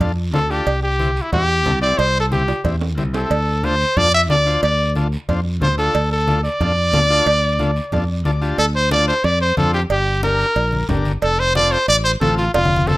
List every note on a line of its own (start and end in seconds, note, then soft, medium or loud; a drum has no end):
0.00 0.33 F2 medium
0.00 0.12 D4 medium
0.00 0.12 F4 medium
0.00 0.12 A4 medium
0.00 cowbell medium
0.00 high conga soft
0.00 low conga medium
0.00 long guiro medium
0.33 0.60 D2 medium
0.33 0.39 D4 medium
0.33 0.39 F4 medium
0.33 0.52 A4 medium
0.33 0.40 C5 medium
0.33 high conga medium
0.33 low timbale medium
0.33 short guiro medium
0.50 0.66 D4 medium
0.50 0.67 F4 medium
0.50 0.82 G4 medium
0.50 0.67 A4 medium
0.50 short guiro medium
0.67 1.19 C2 medium
0.67 cowbell loud
0.67 high conga soft
0.67 long guiro medium
0.83 1.23 G4 medium
0.99 1.11 C4 medium
0.99 1.11 E4 medium
0.99 1.11 G4 medium
0.99 high conga medium
0.99 short guiro medium
1.16 short guiro medium
1.22 1.32 E4 medium
1.32 1.66 E2 medium
1.32 1.44 C4 medium
1.32 1.44 E4 medium
1.32 1.79 G4 medium
1.32 1.44 G4 medium
1.32 cowbell medium
1.32 high conga soft
1.32 low conga medium
1.32 long guiro medium
1.65 1.92 C2 medium
1.65 1.71 C4 medium
1.65 1.72 E4 medium
1.65 1.72 A4 medium
1.65 high conga medium
1.65 low conga medium
1.65 short guiro medium
1.82 1.99 C4 medium
1.82 2.00 E4 medium
1.82 2.00 G4 medium
1.82 1.99 D5 loud
1.82 short guiro medium
1.98 2.51 C2 medium
1.98 2.20 C5 loud
1.98 cowbell loud
1.98 high conga soft
1.98 long guiro medium
2.20 2.25 A4 medium
2.31 2.43 C4 medium
2.31 2.43 E4 medium
2.31 2.43 G4 medium
2.31 2.63 G4 medium
2.31 high conga medium
2.31 short guiro medium
2.48 high timbale medium
2.48 short guiro medium
2.64 2.97 E2 medium
2.64 2.76 C4 medium
2.64 2.76 E4 medium
2.64 2.76 G4 medium
2.64 cowbell medium
2.64 high conga soft
2.64 low conga medium
2.64 long guiro medium
2.81 low timbale medium
2.97 3.24 C2 medium
2.97 3.03 C4 medium
2.97 3.04 E4 medium
2.97 3.04 G4 medium
2.97 high conga medium
2.97 short guiro medium
3.13 3.30 C4 medium
3.13 3.31 E4 medium
3.13 3.31 G4 medium
3.13 3.66 A4 medium
3.13 low timbale medium
3.13 short guiro medium
3.30 3.83 D2 medium
3.30 cowbell loud
3.30 high conga soft
3.30 long guiro medium
3.63 3.75 D4 medium
3.63 3.75 F4 medium
3.63 3.75 A4 medium
3.63 3.99 C5 loud
3.63 high conga medium
3.63 short guiro medium
3.80 short guiro medium
3.96 4.30 F2 medium
3.96 4.08 D4 medium
3.96 4.08 F4 medium
3.96 4.09 A4 medium
3.96 4.13 D5 loud
3.96 cowbell medium
3.96 high conga soft
3.96 low conga medium
3.96 long guiro medium
4.14 4.21 E5 loud
4.29 4.56 D2 medium
4.29 4.35 D4 medium
4.29 4.36 F4 medium
4.29 4.36 A4 medium
4.29 4.61 D5 loud
4.29 high conga medium
4.29 low timbale medium
4.29 short guiro medium
4.46 4.63 D4 medium
4.46 4.64 F4 medium
4.46 4.64 C5 medium
4.46 short guiro medium
4.63 5.16 D2 medium
4.63 4.94 D5 medium
4.63 cowbell loud
4.63 long guiro medium
4.95 5.07 D4 medium
4.95 5.08 F4 medium
4.95 5.08 A4 medium
4.95 high conga medium
4.95 short guiro medium
5.12 short guiro medium
5.29 5.62 F2 medium
5.29 5.40 D4 medium
5.29 5.40 F4 medium
5.29 5.41 C5 medium
5.29 cowbell medium
5.29 high conga soft
5.29 low conga medium
5.29 long guiro medium
5.61 5.88 D2 medium
5.61 5.67 D4 medium
5.61 5.68 F4 medium
5.61 5.68 A4 medium
5.61 5.77 C5 medium
5.61 high conga medium
5.61 low conga medium
5.61 short guiro medium
5.78 5.95 D4 medium
5.78 5.96 F4 medium
5.78 6.09 A4 medium
5.78 5.96 A4 medium
5.78 short guiro medium
5.95 6.47 D2 medium
5.95 cowbell loud
5.95 high conga soft
5.95 long guiro medium
6.11 6.42 A4 medium
6.27 6.39 D4 medium
6.27 6.39 F4 medium
6.27 6.39 A4 medium
6.27 high conga medium
6.27 short guiro medium
6.44 8.21 D5 loud
6.44 short guiro medium
6.60 6.94 F2 medium
6.60 6.72 D4 medium
6.60 6.72 F4 medium
6.60 6.73 A4 medium
6.60 cowbell medium
6.60 high conga soft
6.60 low conga medium
6.60 long guiro medium
6.93 7.20 D2 medium
6.93 6.99 D4 medium
6.93 7.00 F4 medium
6.93 7.00 A4 medium
6.93 high conga medium
6.93 low conga medium
6.93 low timbale medium
6.93 short guiro medium
7.10 7.27 D4 medium
7.10 7.28 F4 medium
7.10 7.28 A4 medium
7.10 short guiro medium
7.26 7.79 D2 medium
7.26 cowbell loud
7.26 high conga soft
7.26 long guiro medium
7.59 7.71 D4 medium
7.59 7.71 F4 medium
7.59 7.71 A4 medium
7.59 high conga medium
7.59 short guiro medium
7.76 short guiro medium
7.92 8.25 F2 medium
7.92 8.04 D4 medium
7.92 8.04 F4 medium
7.92 8.04 A4 medium
7.92 cowbell medium
7.92 high conga soft
7.92 low conga medium
7.92 long guiro medium
8.25 8.52 D2 medium
8.25 8.31 D4 medium
8.25 8.31 F4 medium
8.25 8.31 A4 medium
8.25 8.41 D5 medium
8.25 high conga medium
8.25 short guiro medium
8.41 8.58 D4 medium
8.41 8.58 F4 medium
8.41 8.59 G4 medium
8.41 8.57 A5 medium
8.41 short guiro medium
8.58 9.11 D2 medium
8.58 8.66 A4 medium
8.58 cowbell loud
8.58 high conga soft
8.58 long guiro medium
8.76 8.91 C5 medium
8.91 9.14 D4 medium
8.91 9.14 F4 medium
8.91 9.15 A4 medium
8.91 9.07 D5 loud
8.91 high conga medium
8.91 short guiro medium
9.08 9.26 C5 medium
9.08 short guiro medium
9.24 9.51 F2 loud
9.24 9.40 D5 loud
9.24 cowbell medium
9.24 high conga soft
9.24 long guiro medium
9.41 9.56 C5 medium
9.57 9.84 F2 medium
9.57 9.80 D4 medium
9.57 9.80 F4 medium
9.57 9.73 A4 medium
9.57 9.81 C5 medium
9.57 high conga medium
9.57 short guiro medium
9.74 9.82 G4 medium
9.74 short guiro medium
9.90 10.43 G1 medium
9.90 10.21 G4 medium
9.90 cowbell loud
9.90 high conga soft
9.90 long guiro medium
10.23 10.46 D4 medium
10.23 10.46 G4 medium
10.23 10.47 A#4 medium
10.23 10.86 A#4 medium
10.23 high conga medium
10.23 short guiro medium
10.39 short guiro medium
10.56 10.82 A#1 loud
10.56 cowbell medium
10.56 high conga soft
10.56 long guiro medium
10.73 high conga medium
10.89 11.16 G1 medium
10.89 11.12 D4 medium
10.89 11.12 G4 medium
10.89 11.13 A#4 medium
10.89 high conga medium
10.89 low conga medium
10.89 low timbale medium
10.89 short guiro medium
11.05 high conga medium
11.05 short guiro medium
11.22 11.75 F1 loud
11.22 11.41 A4 loud
11.22 cowbell loud
11.22 high conga soft
11.22 long guiro medium
11.39 11.55 C5 loud
11.55 11.78 C4 medium
11.55 11.78 F4 medium
11.55 11.79 A4 medium
11.55 11.73 D5 loud
11.55 high conga medium
11.55 short guiro medium
11.72 11.88 C5 loud
11.72 short guiro medium
11.88 12.15 A1 loud
11.88 11.96 D5 loud
11.88 cowbell medium
11.88 high conga soft
11.88 long guiro medium
12.04 12.12 C5 medium
12.21 12.48 A1 loud
12.21 12.44 C4 medium
12.21 12.45 F4 medium
12.21 12.37 A4 medium
12.21 12.45 A4 medium
12.21 high conga medium
12.21 low timbale medium
12.21 short guiro medium
12.38 12.53 F4 medium
12.38 short guiro medium
12.54 12.97 F1 medium
12.54 12.89 F4 medium
12.54 cowbell loud
12.54 high conga medium
12.54 long guiro medium
12.65 high conga medium
12.76 high conga medium
12.87 12.97 C4 medium
12.87 12.97 F4 medium
12.87 12.97 A4 medium
12.87 high conga loud
12.87 short guiro medium